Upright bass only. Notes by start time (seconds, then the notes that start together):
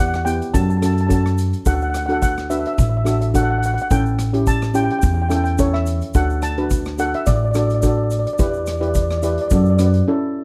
Already playing: E2
0.54 F#2
1.66 D2
2.78 A1
3.91 A1
5.03 E2
6.15 D2
7.27 A1
8.39 E2
9.51 F#2